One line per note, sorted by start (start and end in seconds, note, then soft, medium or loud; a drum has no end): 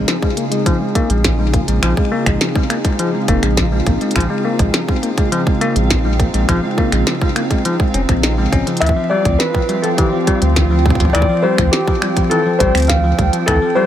0.00 8.82 C#3 medium
0.00 13.86 C4 medium
0.00 8.82 D#4 medium
0.00 13.86 F4 medium
0.00 8.82 G#4 medium
0.08 0.14 F3 medium
0.08 snare loud
0.08 closed hi-hat medium
0.22 0.29 G#3 medium
0.22 kick loud
0.37 0.43 A#3 medium
0.37 closed hi-hat soft
0.52 0.62 G#3 medium
0.52 closed hi-hat medium
0.66 0.77 F3 loud
0.66 kick loud
0.66 closed hi-hat medium
0.81 0.95 G#3 medium
0.95 1.09 A#3 loud
0.95 kick loud
0.95 closed hi-hat medium
1.10 1.63 A#1 medium
1.10 1.24 G#3 medium
1.10 closed hi-hat medium
1.24 1.31 F3 medium
1.24 kick loud
1.24 snare loud
1.24 closed hi-hat medium
1.39 1.45 G#3 medium
1.54 1.60 A#3 medium
1.54 kick loud
1.54 closed hi-hat soft
1.68 1.80 A#1 loud
1.68 1.79 G#3 medium
1.68 closed hi-hat medium
1.83 1.94 A#1 medium
1.83 1.93 F3 loud
1.83 finger snap medium
1.83 closed hi-hat medium
1.97 2.11 G#3 medium
1.97 kick loud
2.12 2.26 A#3 loud
2.26 2.38 A#1 medium
2.26 2.40 G#3 medium
2.26 finger snap medium
2.26 kick loud
2.26 closed hi-hat medium
2.41 2.47 F3 medium
2.41 snare loud
2.41 closed hi-hat medium
2.55 2.62 G#3 medium
2.55 kick loud
2.70 2.76 A#3 medium
2.70 finger snap medium
2.70 closed hi-hat soft
2.85 2.95 G#3 medium
2.85 kick loud
2.85 closed hi-hat medium
2.99 3.10 F3 loud
2.99 closed hi-hat medium
3.14 3.28 G#3 medium
3.28 3.40 F1 loud
3.28 3.42 A#3 loud
3.28 kick loud
3.28 closed hi-hat medium
3.43 3.81 A#1 medium
3.43 3.57 G#3 medium
3.43 finger snap soft
3.43 closed hi-hat medium
3.57 3.64 F3 medium
3.57 kick loud
3.57 snare loud
3.57 closed hi-hat medium
3.72 3.78 G#3 medium
3.87 3.98 A#1 loud
3.87 3.93 A#3 medium
3.87 kick loud
3.87 closed hi-hat soft
4.01 4.12 G#3 medium
4.01 closed hi-hat soft
4.11 closed hi-hat soft
4.16 4.27 A#1 medium
4.16 4.26 F3 loud
4.16 finger snap medium
4.16 kick loud
4.16 closed hi-hat medium
4.20 closed hi-hat soft
4.30 4.44 G#3 medium
4.45 4.59 A#3 medium
4.59 4.71 A#1 medium
4.59 4.73 G#3 medium
4.59 kick loud
4.59 closed hi-hat medium
4.74 4.80 F3 medium
4.74 snare loud
4.74 closed hi-hat medium
4.88 4.95 G#3 medium
4.88 kick loud
5.03 5.09 A#3 medium
5.03 closed hi-hat soft
5.18 5.28 G#3 medium
5.18 kick loud
5.18 closed hi-hat soft
5.32 5.43 F3 loud
5.32 closed hi-hat medium
5.47 5.61 G#3 medium
5.47 kick loud
5.61 5.75 A#3 loud
5.61 closed hi-hat medium
5.76 6.29 A#1 medium
5.76 5.90 G#3 medium
5.76 closed hi-hat soft
5.90 5.97 F3 medium
5.90 kick loud
5.90 snare loud
5.90 closed hi-hat medium
6.05 6.11 G#3 medium
6.20 6.26 A#3 medium
6.20 kick loud
6.20 closed hi-hat soft
6.34 6.46 A#1 medium
6.34 6.44 G#3 medium
6.34 closed hi-hat medium
6.49 6.60 A#1 loud
6.49 6.59 F3 loud
6.49 finger snap medium
6.49 kick loud
6.49 closed hi-hat medium
6.78 6.92 A#3 medium
6.78 kick loud
6.92 7.04 A#1 medium
6.92 7.06 G#3 medium
6.92 finger snap medium
6.92 closed hi-hat medium
7.07 7.13 F3 medium
7.07 snare loud
7.07 closed hi-hat medium
7.21 7.28 G#3 medium
7.21 kick loud
7.36 7.42 A#3 medium
7.36 finger snap medium
7.36 closed hi-hat soft
7.51 7.61 G#3 medium
7.51 kick loud
7.51 closed hi-hat soft
7.65 7.76 F3 loud
7.65 closed hi-hat medium
7.80 kick loud
7.94 8.06 F1 medium
7.94 8.01 C#4 medium
7.94 closed hi-hat medium
8.09 8.48 A#1 medium
8.09 8.23 C4 medium
8.09 finger snap soft
8.09 kick loud
8.09 closed hi-hat soft
8.23 8.34 D#4 medium
8.23 snare loud
8.23 closed hi-hat medium
8.38 8.48 G#3 medium
8.52 8.64 A#1 loud
8.52 8.66 C#4 medium
8.52 kick loud
8.52 closed hi-hat soft
8.67 8.77 F3 medium
8.67 closed hi-hat soft
8.77 9.08 E5 loud
8.77 closed hi-hat soft
8.82 8.93 D2 loud
8.82 8.92 E3 loud
8.82 13.86 F3 medium
8.82 finger snap medium
8.82 closed hi-hat medium
8.86 kick loud
8.86 closed hi-hat soft
8.96 9.10 F3 medium
9.09 9.25 G3 medium
9.09 9.40 D5 medium
9.22 9.37 D2 medium
9.22 9.39 F3 medium
9.22 13.86 F4 medium
9.22 kick loud
9.22 closed hi-hat medium
9.38 9.46 E3 medium
9.38 9.84 B4 loud
9.38 snare loud
9.38 closed hi-hat medium
9.54 9.61 F3 medium
9.54 kick loud
9.62 13.86 G5 medium
9.69 9.75 G3 medium
9.69 closed hi-hat soft
9.82 9.94 F3 medium
9.82 9.87 A4 medium
9.82 closed hi-hat soft
9.97 10.09 E3 loud
9.97 10.81 G4 medium
9.97 kick loud
9.97 closed hi-hat medium
10.13 10.27 F3 medium
10.27 10.41 G3 medium
10.27 kick medium
10.27 closed hi-hat medium
10.42 10.95 D2 medium
10.42 10.52 C4 medium
10.42 closed hi-hat soft
10.56 10.63 E3 medium
10.56 kick loud
10.56 snare loud
10.56 closed hi-hat medium
10.71 10.77 F3 medium
10.86 10.92 G3 medium
10.86 kick loud
10.90 kick medium
10.95 kick medium
11.00 11.12 D2 medium
11.00 11.11 F3 medium
11.00 kick medium
11.00 closed hi-hat soft
11.05 kick soft
11.10 11.41 D5 loud
11.10 kick soft
11.15 11.26 D2 medium
11.15 11.25 E3 loud
11.15 finger snap medium
11.15 closed hi-hat medium
11.22 kick loud
11.29 11.43 F3 medium
11.42 11.58 G3 loud
11.42 11.70 C5 medium
11.58 11.70 D2 medium
11.58 11.72 F3 medium
11.58 finger snap medium
11.58 kick loud
11.58 closed hi-hat soft
11.71 11.79 E3 medium
11.71 12.26 G4 medium
11.71 snare loud
11.71 closed hi-hat medium
11.87 11.94 F3 medium
11.87 kick loud
12.02 12.08 G3 medium
12.02 finger snap medium
12.17 12.27 F3 medium
12.17 kick loud
12.17 closed hi-hat soft
12.30 12.42 E3 medium
12.30 12.58 A4 medium
12.30 closed hi-hat medium
12.46 12.60 F3 medium
12.59 12.72 A1 loud
12.59 12.74 G3 loud
12.59 12.87 C5 loud
12.59 kick loud
12.59 closed hi-hat medium
12.75 13.14 D2 medium
12.75 12.85 C4 medium
12.75 finger snap soft
12.75 closed hi-hat soft
12.77 closed hi-hat soft
12.80 closed hi-hat soft
12.82 closed hi-hat soft
12.85 closed hi-hat soft
12.87 12.96 E3 medium
12.87 13.29 F5 loud
12.87 kick loud
12.87 snare loud
12.87 closed hi-hat soft
12.90 closed hi-hat medium
13.04 13.10 F3 medium
13.19 13.30 D2 loud
13.19 13.25 G3 medium
13.19 kick loud
13.19 closed hi-hat soft
13.33 13.44 F3 medium
13.33 closed hi-hat soft
13.46 13.59 D2 loud
13.46 13.58 E3 loud
13.46 13.77 A4 loud
13.46 finger snap medium
13.46 kick loud
13.46 closed hi-hat medium
13.62 13.76 F3 medium
13.75 13.86 G3 loud
13.75 13.86 C5 loud